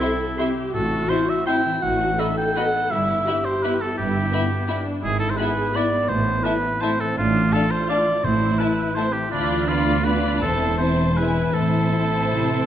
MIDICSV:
0, 0, Header, 1, 10, 480
1, 0, Start_track
1, 0, Key_signature, 1, "minor"
1, 0, Tempo, 363416
1, 969, Time_signature, 3, 2, 24, 8
1, 4801, Tempo, 353982
1, 6698, Key_signature, 0, "minor"
1, 11521, Tempo, 365408
1, 14401, Tempo, 389358
1, 16715, End_track
2, 0, Start_track
2, 0, Title_t, "Violin section"
2, 0, Program_c, 0, 48
2, 17, Note_on_c, 0, 84, 49
2, 123, Note_off_c, 0, 84, 0
2, 517, Note_on_c, 0, 84, 52
2, 622, Note_off_c, 0, 84, 0
2, 1444, Note_on_c, 0, 84, 47
2, 1549, Note_off_c, 0, 84, 0
2, 1927, Note_on_c, 0, 84, 54
2, 2033, Note_off_c, 0, 84, 0
2, 2894, Note_on_c, 0, 83, 47
2, 2999, Note_off_c, 0, 83, 0
2, 3388, Note_on_c, 0, 83, 51
2, 3493, Note_off_c, 0, 83, 0
2, 4322, Note_on_c, 0, 83, 47
2, 4428, Note_off_c, 0, 83, 0
2, 4810, Note_on_c, 0, 83, 50
2, 4919, Note_off_c, 0, 83, 0
2, 5746, Note_on_c, 0, 83, 51
2, 5854, Note_off_c, 0, 83, 0
2, 6225, Note_on_c, 0, 83, 54
2, 6334, Note_off_c, 0, 83, 0
2, 7170, Note_on_c, 0, 83, 52
2, 7278, Note_off_c, 0, 83, 0
2, 7651, Note_on_c, 0, 83, 53
2, 7759, Note_off_c, 0, 83, 0
2, 8601, Note_on_c, 0, 81, 50
2, 8709, Note_off_c, 0, 81, 0
2, 9106, Note_on_c, 0, 81, 52
2, 9214, Note_off_c, 0, 81, 0
2, 10067, Note_on_c, 0, 81, 52
2, 10176, Note_off_c, 0, 81, 0
2, 10581, Note_on_c, 0, 81, 53
2, 10690, Note_off_c, 0, 81, 0
2, 11535, Note_on_c, 0, 81, 53
2, 11640, Note_off_c, 0, 81, 0
2, 12003, Note_on_c, 0, 81, 52
2, 12108, Note_off_c, 0, 81, 0
2, 12479, Note_on_c, 0, 83, 55
2, 12921, Note_off_c, 0, 83, 0
2, 12935, Note_on_c, 0, 83, 53
2, 13420, Note_off_c, 0, 83, 0
2, 13436, Note_on_c, 0, 83, 52
2, 13905, Note_off_c, 0, 83, 0
2, 13908, Note_on_c, 0, 81, 49
2, 14383, Note_off_c, 0, 81, 0
2, 14399, Note_on_c, 0, 81, 47
2, 14864, Note_off_c, 0, 81, 0
2, 14879, Note_on_c, 0, 80, 49
2, 15334, Note_on_c, 0, 81, 47
2, 15339, Note_off_c, 0, 80, 0
2, 16715, Note_off_c, 0, 81, 0
2, 16715, End_track
3, 0, Start_track
3, 0, Title_t, "Oboe"
3, 0, Program_c, 1, 68
3, 0, Note_on_c, 1, 64, 77
3, 715, Note_off_c, 1, 64, 0
3, 969, Note_on_c, 1, 69, 69
3, 1445, Note_on_c, 1, 72, 76
3, 1465, Note_off_c, 1, 69, 0
3, 1710, Note_on_c, 1, 76, 73
3, 1730, Note_off_c, 1, 72, 0
3, 1932, Note_off_c, 1, 76, 0
3, 1940, Note_on_c, 1, 79, 96
3, 2410, Note_on_c, 1, 78, 76
3, 2430, Note_off_c, 1, 79, 0
3, 2901, Note_on_c, 1, 76, 74
3, 2921, Note_off_c, 1, 78, 0
3, 3130, Note_off_c, 1, 76, 0
3, 3138, Note_on_c, 1, 79, 75
3, 3393, Note_on_c, 1, 78, 87
3, 3413, Note_off_c, 1, 79, 0
3, 3843, Note_on_c, 1, 76, 86
3, 3863, Note_off_c, 1, 78, 0
3, 4554, Note_on_c, 1, 72, 72
3, 4574, Note_off_c, 1, 76, 0
3, 4795, Note_on_c, 1, 71, 67
3, 4815, Note_off_c, 1, 72, 0
3, 5038, Note_on_c, 1, 69, 66
3, 5058, Note_off_c, 1, 71, 0
3, 5257, Note_off_c, 1, 69, 0
3, 5265, Note_on_c, 1, 67, 72
3, 6446, Note_off_c, 1, 67, 0
3, 6692, Note_on_c, 1, 68, 85
3, 6908, Note_off_c, 1, 68, 0
3, 6917, Note_on_c, 1, 69, 75
3, 7063, Note_on_c, 1, 72, 58
3, 7083, Note_off_c, 1, 69, 0
3, 7163, Note_on_c, 1, 71, 79
3, 7183, Note_off_c, 1, 72, 0
3, 7681, Note_on_c, 1, 74, 90
3, 7702, Note_off_c, 1, 71, 0
3, 8122, Note_on_c, 1, 72, 78
3, 8143, Note_off_c, 1, 74, 0
3, 8607, Note_on_c, 1, 71, 81
3, 8628, Note_off_c, 1, 72, 0
3, 9115, Note_on_c, 1, 72, 84
3, 9136, Note_off_c, 1, 71, 0
3, 9369, Note_on_c, 1, 69, 73
3, 9389, Note_off_c, 1, 72, 0
3, 9598, Note_off_c, 1, 69, 0
3, 9610, Note_on_c, 1, 65, 81
3, 10081, Note_on_c, 1, 69, 77
3, 10101, Note_off_c, 1, 65, 0
3, 10332, Note_on_c, 1, 72, 80
3, 10352, Note_off_c, 1, 69, 0
3, 10568, Note_off_c, 1, 72, 0
3, 10576, Note_on_c, 1, 74, 91
3, 11047, Note_on_c, 1, 72, 81
3, 11067, Note_off_c, 1, 74, 0
3, 11519, Note_on_c, 1, 71, 74
3, 11539, Note_off_c, 1, 72, 0
3, 12001, Note_on_c, 1, 72, 86
3, 12021, Note_off_c, 1, 71, 0
3, 12227, Note_on_c, 1, 67, 72
3, 12246, Note_off_c, 1, 72, 0
3, 12462, Note_off_c, 1, 67, 0
3, 12470, Note_on_c, 1, 62, 76
3, 12958, Note_on_c, 1, 65, 72
3, 12978, Note_off_c, 1, 62, 0
3, 13435, Note_on_c, 1, 71, 81
3, 13455, Note_off_c, 1, 65, 0
3, 13914, Note_off_c, 1, 71, 0
3, 13920, Note_on_c, 1, 69, 77
3, 14385, Note_off_c, 1, 69, 0
3, 14393, Note_on_c, 1, 72, 70
3, 14878, Note_on_c, 1, 71, 74
3, 14897, Note_off_c, 1, 72, 0
3, 15331, Note_on_c, 1, 69, 74
3, 15349, Note_off_c, 1, 71, 0
3, 16715, Note_off_c, 1, 69, 0
3, 16715, End_track
4, 0, Start_track
4, 0, Title_t, "Violin section"
4, 0, Program_c, 2, 48
4, 20, Note_on_c, 2, 76, 47
4, 24, Note_on_c, 2, 64, 47
4, 126, Note_off_c, 2, 76, 0
4, 129, Note_off_c, 2, 64, 0
4, 515, Note_on_c, 2, 64, 47
4, 520, Note_on_c, 2, 76, 46
4, 621, Note_off_c, 2, 64, 0
4, 625, Note_off_c, 2, 76, 0
4, 1454, Note_on_c, 2, 76, 46
4, 1460, Note_on_c, 2, 64, 45
4, 1560, Note_off_c, 2, 76, 0
4, 1566, Note_off_c, 2, 64, 0
4, 1951, Note_on_c, 2, 76, 47
4, 1953, Note_on_c, 2, 64, 48
4, 2056, Note_off_c, 2, 76, 0
4, 2059, Note_off_c, 2, 64, 0
4, 2883, Note_on_c, 2, 66, 49
4, 2886, Note_on_c, 2, 75, 46
4, 2988, Note_off_c, 2, 66, 0
4, 2992, Note_off_c, 2, 75, 0
4, 3387, Note_on_c, 2, 66, 49
4, 3388, Note_on_c, 2, 75, 47
4, 3493, Note_off_c, 2, 66, 0
4, 3494, Note_off_c, 2, 75, 0
4, 4325, Note_on_c, 2, 64, 50
4, 4325, Note_on_c, 2, 76, 51
4, 4430, Note_off_c, 2, 76, 0
4, 4431, Note_off_c, 2, 64, 0
4, 4812, Note_on_c, 2, 64, 47
4, 4821, Note_on_c, 2, 76, 48
4, 4920, Note_off_c, 2, 64, 0
4, 4929, Note_off_c, 2, 76, 0
4, 5750, Note_on_c, 2, 64, 48
4, 5753, Note_on_c, 2, 76, 50
4, 5859, Note_off_c, 2, 64, 0
4, 5861, Note_off_c, 2, 76, 0
4, 6233, Note_on_c, 2, 76, 48
4, 6236, Note_on_c, 2, 64, 49
4, 6342, Note_off_c, 2, 76, 0
4, 6344, Note_off_c, 2, 64, 0
4, 7191, Note_on_c, 2, 64, 46
4, 7196, Note_on_c, 2, 76, 51
4, 7299, Note_off_c, 2, 64, 0
4, 7305, Note_off_c, 2, 76, 0
4, 7684, Note_on_c, 2, 64, 52
4, 7690, Note_on_c, 2, 76, 46
4, 7793, Note_off_c, 2, 64, 0
4, 7799, Note_off_c, 2, 76, 0
4, 8621, Note_on_c, 2, 76, 53
4, 8628, Note_on_c, 2, 64, 51
4, 8729, Note_off_c, 2, 76, 0
4, 8737, Note_off_c, 2, 64, 0
4, 9138, Note_on_c, 2, 76, 53
4, 9143, Note_on_c, 2, 64, 49
4, 9246, Note_off_c, 2, 76, 0
4, 9251, Note_off_c, 2, 64, 0
4, 10102, Note_on_c, 2, 77, 49
4, 10109, Note_on_c, 2, 62, 50
4, 10211, Note_off_c, 2, 77, 0
4, 10217, Note_off_c, 2, 62, 0
4, 10590, Note_on_c, 2, 77, 52
4, 10598, Note_on_c, 2, 62, 51
4, 10698, Note_off_c, 2, 77, 0
4, 10706, Note_off_c, 2, 62, 0
4, 11542, Note_on_c, 2, 64, 46
4, 11542, Note_on_c, 2, 76, 46
4, 11647, Note_off_c, 2, 64, 0
4, 11647, Note_off_c, 2, 76, 0
4, 12030, Note_on_c, 2, 76, 45
4, 12034, Note_on_c, 2, 64, 48
4, 12135, Note_off_c, 2, 76, 0
4, 12139, Note_off_c, 2, 64, 0
4, 12493, Note_on_c, 2, 65, 54
4, 12493, Note_on_c, 2, 74, 53
4, 12928, Note_off_c, 2, 65, 0
4, 12928, Note_off_c, 2, 74, 0
4, 12976, Note_on_c, 2, 65, 51
4, 12976, Note_on_c, 2, 74, 52
4, 13439, Note_off_c, 2, 65, 0
4, 13444, Note_off_c, 2, 74, 0
4, 13455, Note_on_c, 2, 65, 49
4, 13460, Note_on_c, 2, 74, 51
4, 13914, Note_off_c, 2, 65, 0
4, 13917, Note_off_c, 2, 74, 0
4, 13938, Note_on_c, 2, 64, 50
4, 13939, Note_on_c, 2, 72, 51
4, 14408, Note_off_c, 2, 64, 0
4, 14408, Note_off_c, 2, 72, 0
4, 14425, Note_on_c, 2, 72, 46
4, 14429, Note_on_c, 2, 64, 47
4, 14874, Note_off_c, 2, 64, 0
4, 14877, Note_off_c, 2, 72, 0
4, 14882, Note_on_c, 2, 71, 45
4, 14889, Note_on_c, 2, 64, 45
4, 15335, Note_off_c, 2, 64, 0
4, 15340, Note_off_c, 2, 71, 0
4, 15359, Note_on_c, 2, 64, 52
4, 15363, Note_on_c, 2, 72, 51
4, 16715, Note_off_c, 2, 64, 0
4, 16715, Note_off_c, 2, 72, 0
4, 16715, End_track
5, 0, Start_track
5, 0, Title_t, "Viola section"
5, 0, Program_c, 3, 48
5, 16, Note_on_c, 3, 69, 60
5, 507, Note_on_c, 3, 67, 52
5, 512, Note_off_c, 3, 69, 0
5, 970, Note_off_c, 3, 67, 0
5, 980, Note_on_c, 3, 66, 66
5, 1939, Note_off_c, 3, 66, 0
5, 1946, Note_on_c, 3, 64, 55
5, 2409, Note_off_c, 3, 64, 0
5, 2416, Note_on_c, 3, 66, 67
5, 2875, Note_off_c, 3, 66, 0
5, 2891, Note_on_c, 3, 69, 61
5, 3823, Note_off_c, 3, 69, 0
5, 3841, Note_on_c, 3, 64, 62
5, 4311, Note_on_c, 3, 67, 58
5, 4314, Note_off_c, 3, 64, 0
5, 5255, Note_on_c, 3, 64, 60
5, 5267, Note_off_c, 3, 67, 0
5, 5724, Note_off_c, 3, 64, 0
5, 5742, Note_on_c, 3, 59, 57
5, 6235, Note_off_c, 3, 59, 0
5, 6238, Note_on_c, 3, 62, 58
5, 6696, Note_on_c, 3, 64, 55
5, 6700, Note_off_c, 3, 62, 0
5, 7172, Note_off_c, 3, 64, 0
5, 7175, Note_on_c, 3, 68, 59
5, 7668, Note_on_c, 3, 59, 54
5, 7669, Note_off_c, 3, 68, 0
5, 9116, Note_off_c, 3, 59, 0
5, 9120, Note_on_c, 3, 60, 52
5, 9585, Note_off_c, 3, 60, 0
5, 9586, Note_on_c, 3, 62, 62
5, 10074, Note_off_c, 3, 62, 0
5, 10076, Note_on_c, 3, 65, 60
5, 11042, Note_off_c, 3, 65, 0
5, 11052, Note_on_c, 3, 64, 68
5, 11999, Note_off_c, 3, 64, 0
5, 12036, Note_on_c, 3, 60, 51
5, 12478, Note_on_c, 3, 65, 66
5, 12479, Note_off_c, 3, 60, 0
5, 12944, Note_off_c, 3, 65, 0
5, 12947, Note_on_c, 3, 62, 57
5, 13918, Note_off_c, 3, 62, 0
5, 13931, Note_on_c, 3, 60, 55
5, 14374, Note_off_c, 3, 60, 0
5, 14390, Note_on_c, 3, 60, 50
5, 14859, Note_off_c, 3, 60, 0
5, 14883, Note_on_c, 3, 64, 43
5, 15332, Note_off_c, 3, 64, 0
5, 15339, Note_on_c, 3, 60, 52
5, 16715, Note_off_c, 3, 60, 0
5, 16715, End_track
6, 0, Start_track
6, 0, Title_t, "Harp"
6, 0, Program_c, 4, 46
6, 0, Note_on_c, 4, 48, 57
6, 0, Note_on_c, 4, 55, 43
6, 0, Note_on_c, 4, 60, 49
6, 0, Note_on_c, 4, 64, 46
6, 10, Note_on_c, 4, 66, 39
6, 249, Note_off_c, 4, 64, 0
6, 265, Note_on_c, 4, 64, 46
6, 436, Note_off_c, 4, 66, 0
6, 493, Note_off_c, 4, 60, 0
6, 509, Note_on_c, 4, 60, 49
6, 742, Note_off_c, 4, 55, 0
6, 758, Note_on_c, 4, 55, 43
6, 986, Note_on_c, 4, 45, 56
6, 990, Note_off_c, 4, 48, 0
6, 994, Note_off_c, 4, 55, 0
6, 1189, Note_off_c, 4, 64, 0
6, 1205, Note_on_c, 4, 64, 44
6, 1675, Note_off_c, 4, 64, 0
6, 1691, Note_on_c, 4, 64, 42
6, 1923, Note_off_c, 4, 60, 0
6, 1939, Note_on_c, 4, 60, 46
6, 2178, Note_on_c, 4, 52, 43
6, 2397, Note_off_c, 4, 45, 0
6, 2413, Note_on_c, 4, 45, 56
6, 2423, Note_off_c, 4, 52, 0
6, 2423, Note_off_c, 4, 60, 0
6, 2423, Note_off_c, 4, 64, 0
6, 2645, Note_on_c, 4, 63, 45
6, 2880, Note_on_c, 4, 64, 36
6, 3118, Note_off_c, 4, 63, 0
6, 3134, Note_on_c, 4, 63, 45
6, 3301, Note_off_c, 4, 64, 0
6, 3373, Note_on_c, 4, 59, 48
6, 3615, Note_on_c, 4, 57, 39
6, 3841, Note_on_c, 4, 43, 58
6, 3856, Note_off_c, 4, 63, 0
6, 3857, Note_off_c, 4, 57, 0
6, 3858, Note_off_c, 4, 45, 0
6, 4076, Note_on_c, 4, 64, 44
6, 4323, Note_on_c, 4, 66, 37
6, 4563, Note_off_c, 4, 64, 0
6, 4579, Note_on_c, 4, 64, 45
6, 4734, Note_off_c, 4, 66, 0
6, 4793, Note_off_c, 4, 59, 0
6, 4809, Note_on_c, 4, 59, 49
6, 5053, Note_on_c, 4, 55, 42
6, 5260, Note_off_c, 4, 43, 0
6, 5276, Note_on_c, 4, 43, 57
6, 5492, Note_off_c, 4, 64, 0
6, 5508, Note_on_c, 4, 64, 47
6, 5751, Note_on_c, 4, 66, 39
6, 5977, Note_off_c, 4, 64, 0
6, 5993, Note_on_c, 4, 64, 47
6, 6166, Note_off_c, 4, 66, 0
6, 6220, Note_off_c, 4, 59, 0
6, 6236, Note_on_c, 4, 59, 49
6, 6454, Note_off_c, 4, 55, 0
6, 6471, Note_on_c, 4, 55, 41
6, 6702, Note_on_c, 4, 44, 58
6, 6715, Note_off_c, 4, 55, 0
6, 6720, Note_off_c, 4, 43, 0
6, 6904, Note_off_c, 4, 64, 0
6, 6920, Note_on_c, 4, 64, 46
6, 7165, Note_on_c, 4, 65, 39
6, 7405, Note_off_c, 4, 64, 0
6, 7421, Note_on_c, 4, 64, 43
6, 7591, Note_off_c, 4, 65, 0
6, 7663, Note_off_c, 4, 59, 0
6, 7680, Note_on_c, 4, 59, 52
6, 7911, Note_on_c, 4, 56, 44
6, 8134, Note_on_c, 4, 45, 58
6, 8154, Note_off_c, 4, 44, 0
6, 8155, Note_off_c, 4, 56, 0
6, 8157, Note_off_c, 4, 59, 0
6, 8356, Note_off_c, 4, 64, 0
6, 8372, Note_on_c, 4, 64, 46
6, 8614, Note_on_c, 4, 65, 39
6, 8859, Note_off_c, 4, 64, 0
6, 8875, Note_on_c, 4, 64, 45
6, 9042, Note_off_c, 4, 65, 0
6, 9124, Note_on_c, 4, 57, 53
6, 9368, Note_on_c, 4, 52, 43
6, 9581, Note_off_c, 4, 45, 0
6, 9597, Note_on_c, 4, 45, 53
6, 9616, Note_off_c, 4, 52, 0
6, 9616, Note_off_c, 4, 64, 0
6, 9836, Note_on_c, 4, 65, 42
6, 10080, Note_on_c, 4, 67, 38
6, 10318, Note_off_c, 4, 65, 0
6, 10334, Note_on_c, 4, 65, 45
6, 10504, Note_off_c, 4, 67, 0
6, 10572, Note_off_c, 4, 57, 0
6, 10589, Note_on_c, 4, 57, 49
6, 10821, Note_on_c, 4, 53, 39
6, 11035, Note_off_c, 4, 45, 0
6, 11051, Note_on_c, 4, 45, 58
6, 11063, Note_off_c, 4, 53, 0
6, 11063, Note_off_c, 4, 65, 0
6, 11279, Note_on_c, 4, 64, 44
6, 11523, Note_on_c, 4, 65, 38
6, 11759, Note_off_c, 4, 64, 0
6, 11775, Note_on_c, 4, 64, 47
6, 11943, Note_off_c, 4, 65, 0
6, 12000, Note_off_c, 4, 57, 0
6, 12016, Note_on_c, 4, 57, 50
6, 12246, Note_on_c, 4, 52, 38
6, 12480, Note_on_c, 4, 50, 56
6, 12494, Note_off_c, 4, 52, 0
6, 12496, Note_off_c, 4, 57, 0
6, 12498, Note_off_c, 4, 64, 0
6, 12499, Note_off_c, 4, 45, 0
6, 12713, Note_on_c, 4, 65, 44
6, 13191, Note_off_c, 4, 65, 0
6, 13207, Note_on_c, 4, 65, 42
6, 13463, Note_on_c, 4, 59, 46
6, 13697, Note_on_c, 4, 62, 37
6, 13925, Note_on_c, 4, 52, 47
6, 13940, Note_off_c, 4, 50, 0
6, 13942, Note_off_c, 4, 62, 0
6, 13942, Note_off_c, 4, 65, 0
6, 13946, Note_off_c, 4, 59, 0
6, 14165, Note_on_c, 4, 72, 41
6, 14414, Note_on_c, 4, 74, 32
6, 14627, Note_off_c, 4, 72, 0
6, 14642, Note_on_c, 4, 72, 37
6, 14811, Note_off_c, 4, 74, 0
6, 14864, Note_off_c, 4, 52, 0
6, 14879, Note_on_c, 4, 52, 47
6, 14894, Note_off_c, 4, 72, 0
6, 15108, Note_on_c, 4, 64, 32
6, 15115, Note_on_c, 4, 71, 35
6, 15332, Note_on_c, 4, 45, 44
6, 15357, Note_off_c, 4, 52, 0
6, 15359, Note_off_c, 4, 71, 0
6, 15554, Note_off_c, 4, 64, 0
6, 15568, Note_on_c, 4, 64, 36
6, 15815, Note_on_c, 4, 65, 29
6, 16055, Note_off_c, 4, 64, 0
6, 16070, Note_on_c, 4, 64, 35
6, 16245, Note_off_c, 4, 65, 0
6, 16318, Note_on_c, 4, 57, 35
6, 16564, Note_on_c, 4, 52, 31
6, 16715, Note_off_c, 4, 45, 0
6, 16715, Note_off_c, 4, 52, 0
6, 16715, Note_off_c, 4, 57, 0
6, 16715, Note_off_c, 4, 64, 0
6, 16715, End_track
7, 0, Start_track
7, 0, Title_t, "French horn section"
7, 0, Program_c, 5, 60
7, 0, Note_on_c, 5, 60, 50
7, 0, Note_on_c, 5, 64, 46
7, 175, Note_off_c, 5, 64, 0
7, 176, Note_off_c, 5, 60, 0
7, 502, Note_on_c, 5, 64, 43
7, 510, Note_on_c, 5, 60, 47
7, 671, Note_off_c, 5, 64, 0
7, 677, Note_off_c, 5, 60, 0
7, 1441, Note_on_c, 5, 60, 48
7, 1452, Note_on_c, 5, 64, 47
7, 1619, Note_off_c, 5, 60, 0
7, 1627, Note_off_c, 5, 64, 0
7, 1938, Note_on_c, 5, 64, 48
7, 1945, Note_on_c, 5, 60, 44
7, 2107, Note_off_c, 5, 64, 0
7, 2113, Note_off_c, 5, 60, 0
7, 2880, Note_on_c, 5, 59, 48
7, 2884, Note_on_c, 5, 63, 47
7, 3059, Note_off_c, 5, 59, 0
7, 3062, Note_off_c, 5, 63, 0
7, 3396, Note_on_c, 5, 59, 46
7, 3397, Note_on_c, 5, 63, 46
7, 3559, Note_off_c, 5, 59, 0
7, 3559, Note_off_c, 5, 63, 0
7, 4341, Note_on_c, 5, 59, 46
7, 4341, Note_on_c, 5, 64, 50
7, 4511, Note_off_c, 5, 59, 0
7, 4512, Note_off_c, 5, 64, 0
7, 4814, Note_on_c, 5, 64, 47
7, 4828, Note_on_c, 5, 59, 46
7, 4980, Note_off_c, 5, 64, 0
7, 4991, Note_off_c, 5, 59, 0
7, 5757, Note_on_c, 5, 59, 48
7, 5761, Note_on_c, 5, 64, 49
7, 5931, Note_off_c, 5, 59, 0
7, 5934, Note_off_c, 5, 64, 0
7, 6247, Note_on_c, 5, 64, 49
7, 6254, Note_on_c, 5, 59, 47
7, 6413, Note_off_c, 5, 64, 0
7, 6418, Note_off_c, 5, 59, 0
7, 7162, Note_on_c, 5, 64, 51
7, 7164, Note_on_c, 5, 59, 50
7, 7343, Note_off_c, 5, 64, 0
7, 7345, Note_off_c, 5, 59, 0
7, 7661, Note_on_c, 5, 59, 49
7, 7665, Note_on_c, 5, 64, 45
7, 7832, Note_off_c, 5, 59, 0
7, 7835, Note_off_c, 5, 64, 0
7, 8574, Note_on_c, 5, 64, 53
7, 8580, Note_on_c, 5, 57, 53
7, 8765, Note_off_c, 5, 64, 0
7, 8769, Note_off_c, 5, 57, 0
7, 9121, Note_on_c, 5, 64, 50
7, 9124, Note_on_c, 5, 57, 52
7, 9292, Note_off_c, 5, 64, 0
7, 9295, Note_off_c, 5, 57, 0
7, 10082, Note_on_c, 5, 57, 52
7, 10091, Note_on_c, 5, 62, 49
7, 10261, Note_off_c, 5, 57, 0
7, 10269, Note_off_c, 5, 62, 0
7, 10582, Note_on_c, 5, 62, 48
7, 10593, Note_on_c, 5, 57, 50
7, 10751, Note_off_c, 5, 62, 0
7, 10759, Note_off_c, 5, 57, 0
7, 11512, Note_on_c, 5, 57, 46
7, 11523, Note_on_c, 5, 64, 48
7, 11692, Note_off_c, 5, 57, 0
7, 11701, Note_off_c, 5, 64, 0
7, 12001, Note_on_c, 5, 64, 47
7, 12004, Note_on_c, 5, 57, 46
7, 12171, Note_off_c, 5, 64, 0
7, 12174, Note_off_c, 5, 57, 0
7, 12939, Note_on_c, 5, 59, 48
7, 12939, Note_on_c, 5, 65, 47
7, 13121, Note_off_c, 5, 59, 0
7, 13121, Note_off_c, 5, 65, 0
7, 13438, Note_on_c, 5, 65, 44
7, 13441, Note_on_c, 5, 59, 46
7, 13612, Note_off_c, 5, 65, 0
7, 13615, Note_off_c, 5, 59, 0
7, 14391, Note_on_c, 5, 60, 42
7, 14398, Note_on_c, 5, 64, 41
7, 14564, Note_off_c, 5, 60, 0
7, 14569, Note_off_c, 5, 64, 0
7, 14855, Note_on_c, 5, 64, 42
7, 14859, Note_on_c, 5, 56, 41
7, 15026, Note_off_c, 5, 64, 0
7, 15029, Note_off_c, 5, 56, 0
7, 15820, Note_on_c, 5, 60, 37
7, 15821, Note_on_c, 5, 64, 40
7, 16001, Note_off_c, 5, 60, 0
7, 16002, Note_off_c, 5, 64, 0
7, 16335, Note_on_c, 5, 64, 37
7, 16336, Note_on_c, 5, 60, 36
7, 16504, Note_off_c, 5, 64, 0
7, 16506, Note_off_c, 5, 60, 0
7, 16715, End_track
8, 0, Start_track
8, 0, Title_t, "Cello section"
8, 0, Program_c, 6, 48
8, 972, Note_on_c, 6, 45, 61
8, 1357, Note_off_c, 6, 45, 0
8, 2401, Note_on_c, 6, 45, 61
8, 2794, Note_off_c, 6, 45, 0
8, 3848, Note_on_c, 6, 43, 62
8, 4235, Note_off_c, 6, 43, 0
8, 5273, Note_on_c, 6, 43, 63
8, 5660, Note_off_c, 6, 43, 0
8, 6699, Note_on_c, 6, 44, 65
8, 7090, Note_off_c, 6, 44, 0
8, 8140, Note_on_c, 6, 45, 66
8, 8530, Note_off_c, 6, 45, 0
8, 9599, Note_on_c, 6, 45, 66
8, 9997, Note_off_c, 6, 45, 0
8, 11049, Note_on_c, 6, 45, 69
8, 11437, Note_off_c, 6, 45, 0
8, 12481, Note_on_c, 6, 38, 60
8, 13871, Note_off_c, 6, 38, 0
8, 13925, Note_on_c, 6, 40, 51
8, 15338, Note_off_c, 6, 40, 0
8, 15346, Note_on_c, 6, 45, 44
8, 15763, Note_off_c, 6, 45, 0
8, 15824, Note_on_c, 6, 45, 48
8, 16290, Note_off_c, 6, 45, 0
8, 16323, Note_on_c, 6, 48, 49
8, 16715, Note_off_c, 6, 48, 0
8, 16715, End_track
9, 0, Start_track
9, 0, Title_t, "Timpani"
9, 0, Program_c, 7, 47
9, 8133, Note_on_c, 7, 45, 64
9, 8814, Note_off_c, 7, 45, 0
9, 11045, Note_on_c, 7, 45, 62
9, 11720, Note_off_c, 7, 45, 0
9, 13920, Note_on_c, 7, 40, 58
9, 14590, Note_off_c, 7, 40, 0
9, 16715, End_track
10, 0, Start_track
10, 0, Title_t, "Double bass section"
10, 0, Program_c, 8, 48
10, 979, Note_on_c, 8, 33, 61
10, 1360, Note_off_c, 8, 33, 0
10, 2416, Note_on_c, 8, 33, 65
10, 2801, Note_off_c, 8, 33, 0
10, 3845, Note_on_c, 8, 31, 61
10, 4233, Note_off_c, 8, 31, 0
10, 5279, Note_on_c, 8, 31, 64
10, 5663, Note_off_c, 8, 31, 0
10, 6711, Note_on_c, 8, 32, 64
10, 7096, Note_off_c, 8, 32, 0
10, 8143, Note_on_c, 8, 33, 63
10, 8532, Note_off_c, 8, 33, 0
10, 9614, Note_on_c, 8, 33, 69
10, 10005, Note_off_c, 8, 33, 0
10, 11059, Note_on_c, 8, 33, 66
10, 11443, Note_off_c, 8, 33, 0
10, 12486, Note_on_c, 8, 38, 55
10, 13873, Note_off_c, 8, 38, 0
10, 13927, Note_on_c, 8, 28, 54
10, 15339, Note_off_c, 8, 28, 0
10, 15343, Note_on_c, 8, 33, 46
10, 16715, Note_off_c, 8, 33, 0
10, 16715, End_track
0, 0, End_of_file